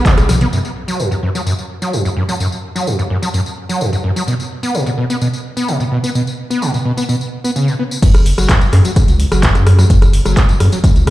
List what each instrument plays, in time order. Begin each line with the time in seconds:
Already playing: sub bass B1
0.06 acid bass B2, kick, clap, closed hi-hat, tambourine
0.18 sub bass B1, acid bass B2, cross-stick, closed hi-hat, tambourine
0.29 acid bass B2, cross-stick, open hi-hat, high tom, tambourine
0.41 acid bass B3, closed hi-hat, mid tom, tambourine
0.53 acid bass F#2, tambourine
0.65 tambourine
0.88 acid bass F#3, tambourine
0.99 acid bass F#2, tambourine
1.11 acid bass F#2, tambourine
1.23 acid bass F#2
1.35 acid bass F#3, tambourine
1.46 acid bass F#2, tambourine
1.59 tambourine
1.82 acid bass F#3, tambourine
1.93 acid bass F#2, tambourine
2.05 acid bass F#2, tambourine
2.17 acid bass F#2
2.29 acid bass F#3, tambourine
2.40 acid bass F#2, tambourine
2.52 tambourine
2.75 acid bass F#3, tambourine
2.87 acid bass F#2, tambourine
2.99 acid bass F#2, tambourine
3.10 acid bass F#2
3.22 acid bass F#3, tambourine
3.34 acid bass F#2, tambourine
3.46 tambourine
3.69 acid bass F#3, tambourine
3.81 acid bass F#2, tambourine
3.93 acid bass F#2, tambourine
4.04 acid bass F#2
4.16 acid bass F#3, tambourine
4.27 acid bass B2, tambourine
4.40 tambourine
4.63 acid bass B3, tambourine
4.74 acid bass B2, tambourine
4.86 acid bass B2, tambourine
4.98 acid bass B2
5.10 acid bass B3, tambourine
5.21 acid bass B2, tambourine
5.33 tambourine
5.57 acid bass B3, tambourine
5.68 acid bass B2, tambourine
5.80 acid bass B2, tambourine
5.92 acid bass B2
6.04 acid bass B3, tambourine
6.15 acid bass B2, tambourine
6.27 tambourine
6.50 acid bass B3, tambourine
6.62 acid bass B2, tambourine
6.74 acid bass B2, tambourine
6.85 acid bass B2
6.97 acid bass B3, tambourine
7.09 acid bass B2, tambourine
7.21 tambourine
7.44 acid bass B3, tambourine
7.56 acid bass C#3, tambourine
7.68 acid bass B2, tambourine
7.79 acid bass B3
7.91 tambourine
8.02 sub bass F#1, acid bass F#2, kick, closed hi-hat, tambourine, crash
8.14 cross-stick, closed hi-hat, tambourine
8.26 open hi-hat
8.38 sub bass F#1, acid bass F#3, cross-stick, closed hi-hat, tambourine
8.49 acid bass F#2, kick, cross-stick, clap, closed hi-hat, tambourine
8.61 acid bass F#2, closed hi-hat, tambourine
8.73 acid bass F#2, sub bass F#2, cross-stick, clap, open hi-hat
8.85 acid bass F#3, closed hi-hat, tambourine
8.96 acid bass F#2, kick, cross-stick, closed hi-hat, tambourine
9.08 sub bass C#2, closed hi-hat, tambourine
9.20 open hi-hat
9.32 sub bass F#1, acid bass F#3, cross-stick, closed hi-hat, tambourine
9.43 acid bass F#2, kick, clap, closed hi-hat, tambourine
9.55 acid bass F#2, sub bass F#2, cross-stick, closed hi-hat, tambourine
9.67 acid bass F#2, cross-stick, open hi-hat
9.79 acid bass F#3, cross-stick, closed hi-hat, tambourine
9.90 sub bass F#1, acid bass F#2, kick, closed hi-hat, tambourine
10.02 cross-stick, closed hi-hat, tambourine
10.13 open hi-hat
10.25 sub bass F#1, acid bass F#3, cross-stick, closed hi-hat, tambourine
10.37 acid bass F#2, kick, cross-stick, clap, closed hi-hat, tambourine
10.49 acid bass F#2, closed hi-hat, tambourine
10.60 sub bass F#2, acid bass F#2, cross-stick, open hi-hat
10.72 acid bass F#3, closed hi-hat, tambourine
10.84 acid bass F#2, kick, cross-stick, closed hi-hat, tambourine
10.96 sub bass C#2, closed hi-hat, tambourine
11.07 kick